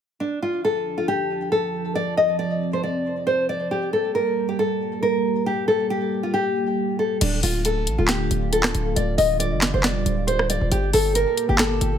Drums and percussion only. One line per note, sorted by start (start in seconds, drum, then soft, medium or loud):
7.21 closed hi-hat medium
7.21 crash loud
7.43 open hi-hat medium
7.65 closed hi-hat medium
7.87 closed hi-hat medium
8.08 snare loud
8.08 clap medium
8.08 closed hi-hat medium
8.31 closed hi-hat medium
8.53 closed hi-hat medium
8.63 cross-stick loud
8.63 snare loud
8.63 clap medium
8.75 closed hi-hat medium
8.96 closed hi-hat medium
9.18 open hi-hat medium
9.40 closed hi-hat medium
9.61 snare loud
9.61 clap medium
9.61 closed hi-hat medium
9.83 snare loud
9.83 clap medium
9.83 closed hi-hat medium
10.06 closed hi-hat medium
10.28 closed hi-hat medium
10.39 cross-stick loud
10.50 closed hi-hat medium
10.72 closed hi-hat medium
10.93 open hi-hat medium
11.15 closed hi-hat medium
11.37 closed hi-hat medium
11.58 snare loud
11.58 clap medium
11.58 closed hi-hat medium
11.81 closed hi-hat medium